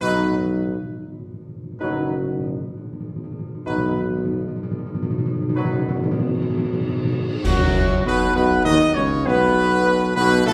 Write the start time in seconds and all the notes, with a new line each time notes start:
0.01 B1 B2 F#3 D#4 B4
0.09 B2
0.24 B2
0.32 B2
0.39 B2
0.46 B2
0.60 B2
0.68 B2
0.75 B2
0.82 B2
0.90 B2
0.97 B2
1.05 B2
1.12 B2
1.20 B2
1.26 B2
1.34 B2
1.41 B2
1.49 B2
1.56 B2
1.63 B2
1.71 B2
1.78 F#1 B2 F#3 D#4 B4
1.85 B2
1.93 B2
2.01 B2
2.09 B2
2.16 B2
2.24 B2
2.31 B2
2.39 B2
2.47 B2
2.54 B2
2.62 B2
2.70 B2
2.77 B2
2.85 B2
2.93 B2
3.00 B2
3.08 B2
3.16 B2
3.24 B2
3.32 B2
3.39 B2
3.47 B2
3.55 B2
3.62 B2 F#3 D#4 B4
3.66 B1 B2
3.78 B2
3.85 B2
3.93 B2
4.01 B2
4.09 B2
4.17 B2
4.25 B2
4.33 B2
4.41 B2
4.48 B2
4.56 B2
4.63 B2
4.71 B2
4.79 B2
4.87 B2
4.95 B2
5.03 B2
5.10 B2
5.18 B2
5.26 B2
5.34 B2
5.42 B2
5.49 B2
5.54 F#1 B2 F#3 D#4 B4
5.65 B2
5.73 B2
5.81 B2
5.89 B2
5.96 B2
6.04 B2
6.11 B2
6.19 B2
6.27 B2
6.34 B2
6.42 B2
6.50 B2
6.58 B2
6.65 B2
6.73 B2
6.81 B2
6.89 B2
6.97 B2
7.05 B2
7.13 B2
7.21 B2
7.29 B2
7.44 F#1 E2 F#2 F#3 F#4, concert bass drum, crash
8.05 B1 B2 B3 B4
8.35 B1 B2 B3 B4
8.64 D#2 D#3 D#4 D#5
8.95 C#2 C#3 C#4 C#5
9.25 B1 B2 B3 B4
10.15 B1 B2 B3 B4
10.46 A1 A2 A3 A4